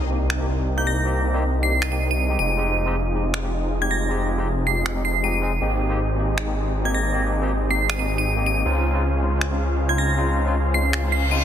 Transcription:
Already playing: C2 C4 D#4 G4 A#4 D#5, sub drop
0.10 A#3 C4 D#4 G4
0.30 finger snap
0.39 A#3 C4 D#4 G4
0.77 A#3 C4 D#4 G4 G6
0.87 A#6
1.05 A#3 C4 D#4 G4
1.34 A#3 C4 D#4 G4
1.62 A#3 C4 D#4 G4 C7
1.82 D#7, finger snap
1.91 A#3 C4 D#4 G4 D#7
2.11 D#7
2.29 G#3 C4 D#4 G4
2.39 F1 C4 D#4 F4 G#4 D#5 D#7
2.57 G#3 C4 D#4 G4
2.86 G#3 C4 D#4 G4
3.14 G#3 C4 D#4 G4
3.34 finger snap
3.43 G#3 C4 D#4 G4
3.81 G#3 C4 D#4 G4 G#6
3.91 A#6
4.09 G#3 C4 D#4 G4
4.38 G#3 C4 D#4 G4
4.66 G#3 C4 D#4 G4 C7
4.86 finger snap
4.95 G#3 C4 D#4 G4
5.05 C7
5.23 G#3 C4 D#4 G4 D#7
5.42 G#3 C4 D#4 G#4
5.61 G#1 A#3 C4 D#4 G4 G#4 D#5
5.89 A#3 C4 D#4 G4
6.18 A#3 C4 D#4 G4
6.38 finger snap
6.46 A#3 C4 D#4 G4
6.84 A#3 C4 D#4 G4 G#6
6.94 A#6
7.13 A#3 C4 D#4 G4
7.41 A#3 C4 D#4 G4
7.70 A#3 C4 D#4 G4 C7
7.90 D#7, finger snap
7.98 A#3 C4 D#4 G4 D#7
8.18 D#7
8.36 A#3 C4 D#4 G4
8.46 D#7
8.64 C#2 G#3 C4 C#4 D#4 F4 G#4 C5 F5
8.93 G#3 C4 D#4 F4
9.21 G#3 C4 D#4 F4
9.41 finger snap
9.50 G#3 C4 D#4 F4
9.88 G#3 C4 D#4 F4 G#6
9.98 A#6
10.16 G#3 C4 D#4 F4
10.45 G#3 C4 D#4 F4
10.73 G#3 C4 D#4 F4 C7
10.93 finger snap, reverse cymbal
11.02 G#3 C4 D#4 F4
11.12 C7
11.30 G#3 C4 D#4 F4 D#7

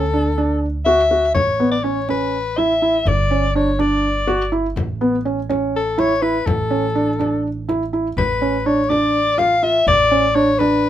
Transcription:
Already playing: D2 A4
0.14 D4
0.38 D4
0.85 F#4 E5
1.11 F#4
1.34 A1 C#5, frame drum
1.60 B3
1.72 D5
1.84 C#4 C#5
2.09 C#4 B4, frame drum
2.58 E4 E5, frame drum
2.82 E4
3.06 G1 D5, frame drum
3.31 C#4
3.55 D4 C#5
3.79 D4 D5, frame drum
4.27 F#4, frame drum
4.52 E4
4.76 A1, frame drum
5.01 B3
5.25 C#4
5.49 C#4, frame drum
5.76 A4
5.98 E4 C#5, frame drum
6.22 E4 B4
6.46 A1 A4, frame drum
6.71 C#4
6.95 D4
7.19 D4, frame drum
7.69 E4, frame drum
7.93 E4
8.17 A1 B4, frame drum
8.42 C#4
8.66 D4 C#5, frame drum
8.90 D4 D5, frame drum
9.38 F4 F5, frame drum
9.63 F4 E5
9.87 A1 D5, frame drum
10.11 C#4, frame drum
10.35 D4 C#5, frame drum
10.59 D4 B4, frame drum

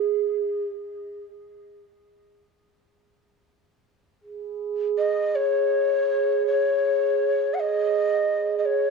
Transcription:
Already playing: G#4
4.20 G#4
4.98 D#5
5.36 C#5
6.47 C#5
7.54 F#5
7.60 D#5
8.58 D#5
8.66 C#5

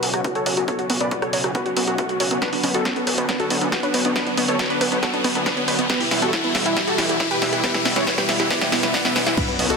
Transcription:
Already playing: B2 C#3 F#3 C#4 F#4, riser
0.03 F#1 F#4, open hi-hat
0.14 F#2 F#4, cross-stick, closed hi-hat
0.24 F#4 B4, kick, closed hi-hat
0.35 A4 C#5 F#5, closed hi-hat
0.46 F#1 F#4 C#5, open hi-hat
0.57 F#1 F#4, closed hi-hat
0.68 B3 A4 C#5, kick, closed hi-hat
0.79 F#4, closed hi-hat
0.90 F#1 B3 F#4, open hi-hat
1.00 F#1 B3 B4 D5, closed hi-hat
1.11 F#4 B4, kick, closed hi-hat
1.22 A4 C#5 F#5, cross-stick, closed hi-hat
1.33 F#2 F#4 C#5, open hi-hat
1.44 F#1 F#4, cross-stick, closed hi-hat
1.55 B3 F#4 B4, kick, closed hi-hat
1.66 F#4, closed hi-hat
1.77 F#1 B3 F#4, open hi-hat
1.87 F#1 F#4, closed hi-hat
1.98 A3 F#4 B4, kick, closed hi-hat
2.09 F#4 F#5, closed hi-hat
2.20 F#1 F#4 C#5, open hi-hat
2.31 F#1 B3 F#4, closed hi-hat
2.42 D3 B3 D4 F#4 B4, kick, snare, closed hi-hat
2.53 B3 D4, open hi-hat
2.64 B1 B3 C#4, open hi-hat
2.74 B1 B3 F#4 A4, closed hi-hat
2.85 B3 C#4, kick, snare, closed hi-hat
2.96 B3, closed hi-hat
3.07 F#1 B4, open hi-hat
3.18 B1 B3 B4, closed hi-hat
3.29 B3 D4, kick, snare, closed hi-hat
3.40 D4 F#4 A4, closed hi-hat
3.50 B1 B3 D4, open hi-hat
3.61 F#1 B3 D4, closed hi-hat
3.72 B3 F#4, kick, snare, closed hi-hat
3.83 D4 B4 C#5, closed hi-hat
3.94 B1 B3 B4, open hi-hat
4.05 B1 B3 D4, closed hi-hat
4.16 B3 D4 B4, kick, snare, closed hi-hat
4.27 B3 D4, closed hi-hat
4.37 B1 B3, open hi-hat
4.48 B1 B3 A4 C#5, closed hi-hat
4.59 B3 F#4, kick, snare, closed hi-hat
4.70 D4 B4 C#5, closed hi-hat
4.81 F#1 B3 B4, open hi-hat
4.92 B1 B3 D4, closed hi-hat
5.03 B3 F#4 A4, kick, snare, closed hi-hat
5.13 B3 D4, closed hi-hat
5.24 B1 B3, open hi-hat
5.35 F#1 B3 D4, closed hi-hat
5.46 D4 F#4 B4, kick, snare, closed hi-hat
5.57 B3 C#5, closed hi-hat
5.68 B1 B3 B4, open hi-hat
5.78 B1 B3, closed hi-hat
5.89 B2 E3 G3 B3 E4 G4 B4, kick, snare, closed hi-hat
6.00 E4 G4, open hi-hat
6.11 E2 E4, snare, open hi-hat
6.22 E2 B3 F#4 A4, closed hi-hat
6.33 E4, kick, snare, closed hi-hat
6.44 B3 E4, closed hi-hat
6.55 E1 E5, snare, open hi-hat
6.66 E2 E4 E5, closed hi-hat
6.76 E4 G4, kick, snare, closed hi-hat
6.87 F#4 G4 A4, closed hi-hat
6.98 E2 E4 G4, snare, open hi-hat
7.09 E1 E4 G4, closed hi-hat
7.20 E4 B4, kick, snare, closed hi-hat
7.31 G4 B4 G5, closed hi-hat
7.42 E2 E4 E5, snare, open hi-hat
7.53 E2 E4 G4, closed hi-hat
7.63 B3 G4 B4, kick, snare, closed hi-hat
7.74 E4 G4, snare, closed hi-hat
7.85 E2 B3 E4, snare, open hi-hat
7.96 E2 B3 E4 C#5, snare, closed hi-hat
8.07 E4 B4, kick, snare, closed hi-hat
8.18 G4 B4 G5, snare, closed hi-hat
8.29 E1 E4 E5, snare, open hi-hat
8.39 E2 E4 G4, snare, closed hi-hat
8.50 B3 B4 D5, kick, snare, closed hi-hat, swell
8.61 E4 G4, snare, closed hi-hat
8.72 E2 B3 E4, snare, open hi-hat
8.83 E4 B4, snare, closed hi-hat
8.94 B3 D5 F#5, kick, snare, open hi-hat
9.05 B3 E4, snare, closed hi-hat
9.16 E2 E4 B4, snare, open hi-hat
9.26 E2 E4 E5, snare, closed hi-hat
9.37 D3 F#3 B3 C#4 D4 F#4 B4, kick, closed hi-hat, crash, sub drop
9.48 B3, closed hi-hat
9.59 B1 B3, open hi-hat
9.70 B1 F#4 A4, closed hi-hat

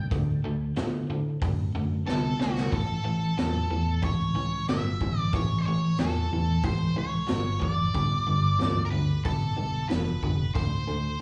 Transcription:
0.11 D2 D3 A3, kick, open hi-hat
0.44 D2 D3 A3
0.76 A2 D3 B3, snare, open hi-hat
1.09 A2 D3 A3
1.42 F#2 D3 A3, kick, open hi-hat
1.75 F#2 D3 A3
2.07 C2 D3 B3 A4, snare
2.40 C2 D3 A3 F#4, snare
2.57 snare
2.72 A1 A2 E3 A4, kick, open hi-hat
3.05 A1 A2 E3
3.38 E2 A2 F#3, snare, open hi-hat
3.70 E2 A2 E3
4.02 A2 E3 C#5, kick, open hi-hat
4.35 C#2 A2 E3
4.68 G1 A2 F#3 E5, snare, open hi-hat
5.01 G1 A2 E3, kick
5.20 D5
5.33 A1 A2 E3 C#5, kick, open hi-hat
5.59 C5
5.66 A1 A2 E3 C#5
5.98 E2 A2 F#3 A4, snare, open hi-hat
6.32 E2 A2 E3
6.63 A2 E3 C5, kick, open hi-hat
6.96 C#2 A2 E3 C#5
7.28 G1 A2 F#3, snare, open hi-hat
7.60 F#1 A2 E3 D5, kick
7.94 G1 G2 D3, kick, open hi-hat
8.27 G1 G2 D3
8.59 D2 G2 E3, snare, open hi-hat
8.85 A#4
8.91 D2 G2 D3 B4
9.25 B1 G2 D3 A4, kick, open hi-hat
9.57 B1 G2 D3
9.89 F1 G2 E3 B4, snare, open hi-hat
10.23 F1 G2 D3, kick
10.55 D2 D3 A3 C5, kick, open hi-hat
10.88 D2 D3 A3

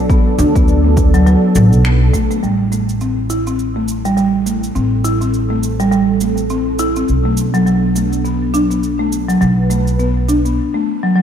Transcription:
Already playing: F#3 B3 D4 A4
0.10 B3, kick, shaker
0.38 D2 D4, shaker
0.56 B3, kick, shaker
0.68 shaker
0.85 A3
0.97 kick, shaker
1.14 F#3, shaker
1.26 F#3, shaker
1.55 A1 F#3, shaker
1.73 B1, shaker
1.85 B3, finger snap, shaker
2.13 A3, kick, shaker
2.31 A3, shaker
2.42 A1 G3 C4 E4 A4, shaker
2.72 A3, shaker
2.89 shaker
3.01 C4, shaker
3.30 E4, shaker
3.47 C4, shaker
3.59 shaker
3.76 A3
3.88 shaker
4.05 G3, shaker
4.17 G3, shaker
4.46 A3, shaker
4.63 shaker
4.75 A1 C4, shaker
5.04 E4, shaker
5.21 C4, shaker
5.34 shaker
5.50 A3
5.63 shaker
5.80 G3, shaker
5.92 G3, shaker
6.21 A3, shaker
6.37 shaker
6.50 C4, shaker
6.79 E4, shaker
6.96 C4, shaker
7.08 B1 F#3 B3 D4, shaker
7.25 A3
7.37 shaker
7.54 F#3, shaker
7.66 F#3, shaker
7.96 A3, shaker
8.13 shaker
8.25 B3, shaker
8.54 D4, shaker
8.70 B3, shaker
8.83 shaker
8.99 A3
9.12 shaker
9.28 F#3, shaker
9.41 B1 F#3 B4, shaker
9.70 A3, shaker
9.87 shaker
9.99 B3, shaker
10.29 D4, shaker
10.45 B3, shaker
10.74 A3
11.03 F#3
11.16 F#3

